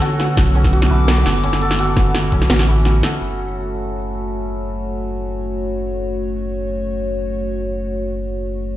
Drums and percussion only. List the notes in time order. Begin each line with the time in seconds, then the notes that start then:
0.02 closed hi-hat
0.20 snare, closed hi-hat
0.37 kick, snare, closed hi-hat
0.55 closed hi-hat
0.64 kick, snare
0.73 closed hi-hat
0.82 snare
1.08 snare, closed hi-hat
1.26 snare, closed hi-hat
1.44 closed hi-hat
1.53 snare
1.61 closed hi-hat
1.71 snare
1.79 closed hi-hat
1.97 kick, snare, closed hi-hat
2.15 snare, closed hi-hat
2.32 kick, closed hi-hat
2.42 snare
2.50 snare, closed hi-hat
2.59 snare
2.67 closed hi-hat
2.85 snare, closed hi-hat
3.03 snare, closed hi-hat